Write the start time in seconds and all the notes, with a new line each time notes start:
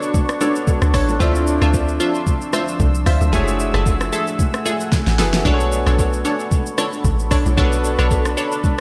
Already playing: B3 D4 F#4 A4 C5 C#5 A5 C#6
0.02 shaker
0.14 kick, low conga, shaker
0.29 cross-stick, shaker
0.40 B3 D4 F#4 A4 C#5, low bongo, shaker
0.56 shaker
0.67 kick, high bongo, low conga, shaker
0.82 D2, cross-stick, shaker
0.94 A1 D4 A4 C#5, kick, cross-stick, open hi-hat, shaker
1.09 high bongo, low bongo, shaker
1.19 D2 F3 C4 E4 F4 A4 C5 D5 E5 C6 E6, kick, low conga, shaker
1.35 shaker
1.47 shaker
1.62 D2 F4 C5 E5, cross-stick, shaker
1.74 kick, high bongo, shaker
1.88 shaker
2.00 F4 C5 E5, shaker
2.15 shaker
2.27 kick, low conga, shaker
2.41 shaker
2.53 F4 C5 E5, cross-stick, low bongo, shaker
2.68 shaker
2.80 C2, kick, high bongo, low conga, shaker
2.95 shaker
3.06 D2 F4 C5 E5, kick, cross-stick, open hi-hat, shaker
3.21 D2, high bongo, low bongo, shaker
3.32 F#1 A3 E4 F#4 G#4 A4 C#5 E5 F#5 G#5, kick, low conga, shaker
3.48 shaker
3.60 shaker
3.74 F#1 G#4 A4 E5, cross-stick, shaker
3.86 kick, high bongo, shaker
4.01 cross-stick, shaker
4.12 G#4 A4 E5, shaker
4.27 shaker
4.39 kick, low conga, shaker
4.54 cross-stick, shaker
4.66 G#4 A4 E5, low bongo, shaker
4.80 shaker
4.92 kick, snare, high bongo, low conga, shaker
5.07 A1, snare, shaker
5.18 F#1 A3 E4 F#4 G#4 A4 B4 E5, snare, open hi-hat, shaker
5.34 snare, high bongo, low bongo, shaker
5.44 B1 B3 D4 F#4 A4 B4 C#5 B5 C#6, kick, low conga, shaker
5.54 C#5
5.60 shaker
5.72 shaker
5.86 B1 D4 A4 C#5, cross-stick, shaker
5.99 kick, high bongo, shaker
6.13 shaker
6.25 D4 A4 C#5, shaker
6.40 shaker
6.51 kick, low conga, shaker
6.66 shaker
6.78 D4 A4 C#5, cross-stick, low bongo, shaker
6.93 shaker
7.05 A1, kick, high bongo, low conga, shaker
7.19 shaker
7.31 B1 D4 A4 C#5, kick, cross-stick, open hi-hat, shaker
7.46 B1, high bongo, low bongo, shaker
7.57 B1 B3 D4 F#4 A4 B4 C#5 A5, kick, low conga, shaker
7.72 shaker
7.84 shaker
7.99 B1 D4 A4 C#5, cross-stick, shaker
8.11 kick, high bongo, shaker
8.25 cross-stick, shaker
8.37 D4 A4 C#5, shaker
8.52 shaker
8.64 kick, low conga, shaker